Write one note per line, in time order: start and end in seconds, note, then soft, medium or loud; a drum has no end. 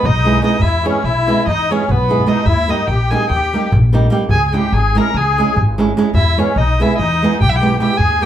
0.03 0.39 B1 loud
0.03 0.42 D#4 medium
0.03 0.44 D#5 loud
0.03 darbuka dum medium
0.24 0.38 G#3 medium
0.24 0.38 B3 medium
0.24 0.38 E4 medium
0.24 0.39 G#4 medium
0.24 darbuka tek medium
0.41 0.55 G#3 medium
0.41 0.55 B3 medium
0.41 0.60 D#4 medium
0.41 0.56 E4 medium
0.41 0.56 G#4 medium
0.41 0.63 D#5 medium
0.41 darbuka tek medium
0.59 0.87 E2 medium
0.59 0.85 E4 medium
0.59 0.88 E5 medium
0.59 darbuka dum medium
0.83 0.98 G#3 medium
0.83 0.98 B3 medium
0.83 1.04 C#4 medium
0.83 0.98 E4 medium
0.83 0.98 G#4 medium
0.83 1.06 C#5 medium
0.83 darbuka tek medium
0.94 darbuka tek soft
1.03 1.29 B1 medium
1.03 1.46 E4 medium
1.03 1.47 E5 medium
1.03 darbuka tek medium
1.27 1.40 G#3 medium
1.27 1.40 B3 medium
1.27 1.41 E4 medium
1.27 1.41 G#4 medium
1.27 darbuka tek medium
1.37 darbuka tek soft
1.46 1.72 E2 medium
1.46 1.69 D#4 medium
1.46 1.73 D#5 loud
1.46 darbuka tek medium
1.46 darbuka dum medium
1.58 darbuka tek soft
1.70 1.83 G#3 medium
1.70 1.84 B3 medium
1.70 1.89 C#4 medium
1.70 1.84 E4 medium
1.70 1.84 G#4 medium
1.70 1.93 C#5 medium
1.70 darbuka tek medium
1.80 darbuka tek soft
1.89 2.23 B1 medium
1.89 2.28 B3 medium
1.89 2.29 B4 medium
1.89 darbuka dum medium
2.09 2.22 G#3 medium
2.09 2.22 B3 soft
2.09 2.22 E4 medium
2.09 2.23 G#4 medium
2.09 darbuka dum soft
2.19 darbuka dum medium
2.26 2.39 G#3 medium
2.26 2.40 B3 medium
2.26 2.46 D#4 medium
2.26 2.40 E4 medium
2.26 2.40 G#4 medium
2.26 2.48 D#5 medium
2.26 darbuka tek medium
2.37 darbuka tek medium
2.46 2.71 D#2 medium
2.46 2.70 E4 medium
2.46 2.71 E5 medium
2.46 darbuka dum medium
2.58 darbuka tek soft
2.68 2.81 G3 medium
2.68 2.82 A#3 medium
2.68 2.82 D#4 medium
2.68 2.89 D#4 medium
2.68 2.82 G4 medium
2.68 2.89 D#5 medium
2.68 darbuka tek medium
2.79 darbuka tek soft
2.87 3.13 A#1 medium
2.87 3.13 G4 medium
2.87 3.12 G5 medium
2.87 darbuka tek medium
3.11 3.24 G3 medium
3.11 3.24 A#3 medium
3.11 3.25 D#4 medium
3.11 3.25 G4 medium
3.11 3.31 G#4 medium
3.11 3.29 G#5 medium
3.11 darbuka tek medium
3.30 3.55 D#2 medium
3.30 3.71 G4 medium
3.30 3.69 G5 medium
3.30 darbuka tek medium
3.42 darbuka tek soft
3.53 3.67 G3 medium
3.53 3.67 A#3 medium
3.53 3.68 D#4 medium
3.53 3.68 G4 medium
3.53 darbuka tek medium
3.64 darbuka tek soft
3.72 4.06 A#1 loud
3.72 darbuka dum loud
3.93 4.06 G3 medium
3.93 4.06 A#3 medium
3.93 4.06 D#4 medium
3.93 4.07 G4 medium
3.93 darbuka tek medium
4.03 darbuka tek soft
4.10 4.23 G3 medium
4.10 4.24 A#3 medium
4.10 4.24 D#4 medium
4.10 4.24 G4 medium
4.29 4.55 C#2 medium
4.29 4.47 G#4 medium
4.29 4.47 G#5 loud
4.29 darbuka dum medium
4.48 4.54 G#4 soft
4.48 4.55 G#5 medium
4.52 4.66 G#3 medium
4.52 4.66 C#4 medium
4.52 4.66 E4 medium
4.52 4.73 G4 medium
4.52 4.67 G#4 medium
4.52 4.75 G5 medium
4.52 darbuka tek medium
4.64 darbuka tek soft
4.72 4.98 G#1 medium
4.72 4.97 G#4 medium
4.72 4.99 G#5 medium
4.72 darbuka tek medium
4.95 5.08 G#3 medium
4.95 5.09 C#4 medium
4.95 5.09 E4 medium
4.95 5.10 G#4 medium
4.95 5.16 A#4 medium
4.95 5.18 A#5 medium
4.95 darbuka tek medium
5.14 5.40 C#2 medium
5.14 5.58 G#4 medium
5.14 5.58 G#5 medium
5.14 darbuka tek medium
5.26 darbuka tek soft
5.38 5.51 G#3 medium
5.38 5.51 C#4 medium
5.38 5.52 E4 medium
5.38 5.52 G#4 medium
5.38 darbuka tek medium
5.48 darbuka tek soft
5.56 5.91 G#1 loud
5.56 darbuka dum medium
5.78 5.91 G#3 medium
5.78 5.91 C#4 medium
5.78 5.91 E4 medium
5.78 5.92 G#4 medium
5.78 darbuka tek medium
5.88 darbuka tek soft
5.97 6.09 G#3 medium
5.97 6.09 C#4 medium
5.97 6.09 E4 medium
5.97 6.10 G#4 medium
5.97 darbuka tek medium
6.14 6.39 E2 medium
6.14 6.37 E4 medium
6.14 6.40 E5 loud
6.14 darbuka dum loud
6.27 darbuka tek soft
6.37 6.50 G#3 medium
6.37 6.51 B3 medium
6.37 6.56 C#4 medium
6.37 6.51 E4 medium
6.37 6.51 G#4 medium
6.37 6.59 C#5 medium
6.37 darbuka tek medium
6.48 darbuka tek soft
6.56 6.81 B1 medium
6.56 6.80 D#4 medium
6.56 6.83 D#5 medium
6.56 darbuka tek medium
6.80 6.93 G#3 medium
6.80 6.93 B3 medium
6.80 6.98 E4 medium
6.80 6.94 E4 medium
6.80 6.94 G#4 medium
6.80 6.98 E5 loud
6.80 darbuka tek medium
6.98 7.25 E2 medium
6.98 7.39 D#4 medium
6.98 7.38 D#5 medium
6.98 darbuka tek medium
7.12 darbuka tek soft
7.22 7.36 G#3 medium
7.22 7.36 B3 medium
7.22 7.36 E4 medium
7.22 7.37 G#4 medium
7.22 darbuka tek medium
7.32 darbuka tek soft
7.40 7.76 B1 loud
7.40 7.48 G4 medium
7.40 7.51 G5 loud
7.40 darbuka dum medium
7.49 7.57 E4 medium
7.49 7.58 E5 medium
7.55 7.78 G4 medium
7.55 7.79 G5 medium
7.61 7.74 G#3 medium
7.61 7.74 B3 medium
7.61 7.75 E4 medium
7.61 7.75 G#4 medium
7.61 darbuka tek medium
7.72 darbuka tek soft
7.79 7.93 G#3 medium
7.79 7.93 B3 medium
7.79 7.93 E4 medium
7.79 7.96 G4 medium
7.79 7.93 G#4 medium
7.79 7.99 G5 loud
7.79 darbuka tek medium
7.97 8.24 D#2 medium
7.97 8.22 G#4 medium
7.97 8.24 G#5 loud
7.97 darbuka dum medium
8.11 darbuka tek soft
8.21 8.26 G3 medium
8.21 8.26 A#3 medium
8.21 8.26 G4 medium
8.21 8.26 G5 medium
8.21 darbuka tek medium